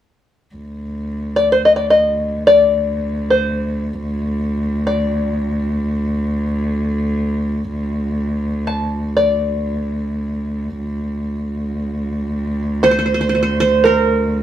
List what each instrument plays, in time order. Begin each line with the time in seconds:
0.55 cello D2
1.36 five-string banjo D5
1.52 five-string banjo C5
1.65 five-string banjo D#5
1.76 five-string banjo D5
1.90 five-string banjo D#5
2.47 five-string banjo D5
3.30 five-string banjo C5
4.87 five-string banjo D5
8.67 five-string banjo A5
9.17 five-string banjo D5
10.79 cello D2
12.83 five-string banjo C5, qanun C5
12.91 qanun C5
12.99 qanun C5
13.06 qanun C5
13.14 qanun C5
13.21 qanun C5
13.29 qanun C5
13.35 qanun C5
13.43 qanun C5
13.60 qanun C5
13.84 five-string banjo A#4, qanun A#4